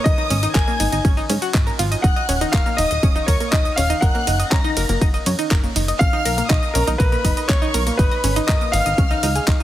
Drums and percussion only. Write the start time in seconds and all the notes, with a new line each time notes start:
0.06 kick, closed hi-hat, ride, shaker
0.18 closed hi-hat
0.30 open hi-hat, ride, shaker
0.43 closed hi-hat, shaker
0.55 kick, clap, closed hi-hat, ride, shaker
0.68 closed hi-hat, shaker
0.80 open hi-hat, ride, shaker
0.92 closed hi-hat, shaker
1.05 kick, closed hi-hat, ride, shaker
1.17 closed hi-hat, shaker
1.30 open hi-hat, ride, shaker
1.42 closed hi-hat, shaker
1.54 kick, clap, closed hi-hat, ride, shaker
1.67 closed hi-hat, shaker
1.79 open hi-hat, ride, shaker
1.92 closed hi-hat, shaker
2.04 kick, closed hi-hat, ride, shaker
2.16 closed hi-hat
2.29 open hi-hat, ride, shaker
2.41 closed hi-hat, shaker
2.54 kick, clap, closed hi-hat, ride, shaker
2.66 closed hi-hat, shaker
2.78 open hi-hat, ride, shaker
2.91 closed hi-hat, shaker
3.03 kick, closed hi-hat, ride, shaker
3.16 closed hi-hat, shaker
3.28 kick, open hi-hat, ride, shaker
3.40 closed hi-hat, shaker
3.53 kick, clap, closed hi-hat, ride, shaker
3.65 closed hi-hat, shaker
3.78 open hi-hat, ride, shaker
3.90 closed hi-hat, shaker
4.02 kick, closed hi-hat, ride, shaker
4.15 closed hi-hat
4.27 open hi-hat, ride, shaker
4.40 closed hi-hat, shaker
4.52 kick, clap, closed hi-hat, ride, shaker
4.64 closed hi-hat, shaker
4.77 open hi-hat, ride, shaker
4.89 closed hi-hat, shaker
5.01 kick, closed hi-hat, ride, shaker
5.14 closed hi-hat, shaker
5.26 open hi-hat, ride, shaker
5.39 closed hi-hat, shaker
5.51 kick, clap, closed hi-hat, ride, shaker
5.64 closed hi-hat, shaker
5.76 open hi-hat, ride, shaker
5.88 closed hi-hat, shaker
6.01 kick, closed hi-hat, ride, shaker
6.13 closed hi-hat
6.25 open hi-hat, ride, shaker
6.38 closed hi-hat, shaker
6.50 kick, clap, closed hi-hat, ride, shaker
6.63 closed hi-hat, shaker
6.75 open hi-hat, ride, shaker
6.87 closed hi-hat, shaker
7.00 kick, closed hi-hat, ride, shaker
7.12 closed hi-hat, shaker
7.25 kick, open hi-hat, ride, shaker
7.37 closed hi-hat, shaker
7.49 kick, clap, closed hi-hat, ride, shaker
7.62 closed hi-hat, shaker
7.74 open hi-hat, ride, shaker
7.87 closed hi-hat, shaker
7.99 kick, closed hi-hat, ride, shaker
8.11 closed hi-hat
8.24 open hi-hat, ride, shaker
8.36 closed hi-hat, shaker
8.49 kick, clap, closed hi-hat, ride, shaker
8.61 closed hi-hat, shaker
8.73 open hi-hat, ride, shaker
8.86 closed hi-hat, shaker
8.98 kick, closed hi-hat, ride, shaker
9.11 closed hi-hat, shaker
9.23 open hi-hat, ride, shaker
9.35 closed hi-hat, shaker
9.48 kick, clap, closed hi-hat, ride, shaker